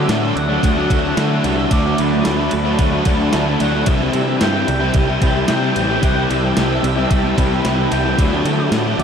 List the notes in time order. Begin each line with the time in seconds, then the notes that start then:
Already playing: F#3 D4 F#4 E5 A5 D6
0.09 A2 D3 F#3 A3 D4 F#4, snare, ride
0.23 F#3 A3 D4 F#4
0.36 D2 F#3 F#5, muted overdriven electric guitar stroke, ride
0.50 F#3 A3 D4 F#4
0.63 D2 F#3 F#5, kick, ride
0.77 F#3 A3 D4 F#4
0.90 D2 D3 F#3 A3 D4 F#4, kick, ride
1.17 D3 F#3 A3 D4 E4 F#4 E5, snare, ride
1.31 F#3 A3 D4 F#4
1.44 C2 D3 F#3 A3 D4 F#4, ride
1.57 F#3 A3 D4 F#4
1.70 D2 D3 F#3 A3 D4 F#4 D5, kick, ride
1.83 F#3 A3 D4 F#4
1.98 D2 F#3 B4, ride
2.24 D2 D3 F#3 A3 D4 F#4, snare, ride
2.38 F#3 A3 D4 F#4
2.51 D2 F#3, muted overdriven electric guitar stroke, ride
2.65 F#3 A3 D4 F#4
2.79 D2 F#3, kick, ride
2.92 F#3 A3 D4 F#4
3.05 D2 D3 F#3 A3 D4 F#4 A4, kick, ride
3.32 D2 D3 F#3 A3 D4 E4 F#4, snare, ride
3.46 F#3 A3 D4 F#4
3.59 D2 D3 F#3 A3 D4 F#4 F#5, ride
3.73 F#3 A3 D4 F#4
3.86 C2 C3 E3 G3 C4 E4 G4 E5 G5 B5, kick, ride
3.99 G3 C4 E4 G4
4.13 C3 G3, ride
4.40 G2 C3 E3 G3 C4 E4 G4 G5, snare, ride
4.53 G3 C4 E4 G4
4.67 C2 G3, muted overdriven electric guitar stroke, ride
4.80 G3 C4 E4 G4
4.94 C2 G3 A5, kick, ride
5.07 G3 C4 E4 G4
5.21 C2 C3 E3 G3 C4 E4 G4, kick, ride
5.48 C3 E3 G3 C4 E4 G4 G5, snare, ride
5.61 G3 C4 E4 G4
5.75 A1 C3 E3 G3 C4 E4 G4, ride
5.88 G3 C4 E4 G4
6.02 C2 C3 E3 G3 C4 E4 G4 F#5 A5, kick, ride
6.15 G3 C4 E4 G4
6.30 C2 G3 E5, ride
6.57 C2 C3 E3 G3 C4 E4 G4, snare, ride
6.69 G3 C4 E4 G4
6.84 C2 G3, muted overdriven electric guitar stroke, ride
6.95 G3 C4 E4 G4
7.11 C2 G3, kick, ride
7.23 G3 C4 E4 G4
7.36 C2 C3 E3 G3 C4 E4 G4 B4, kick, ride
7.64 C2 C3 E3 G3 C4 E4 G4, snare, ride
7.76 G3 C4 E4 G4
7.90 C2 C3 E3 G3 B3 C4 E4 G4 G5, ride
8.05 G3 C4 E4 G4
8.17 D2 D3 F#3 A3 D4 F#4 E5 A5 D6, kick, ride
8.31 F#3 A3 D4 F#4
8.45 D3 F#3, ride
8.72 A2 D3 F#3 A3 D4 F#4, snare, ride
8.85 F#3 A3 D4 F#4
8.98 D2 F#3 D5, muted overdriven electric guitar stroke, ride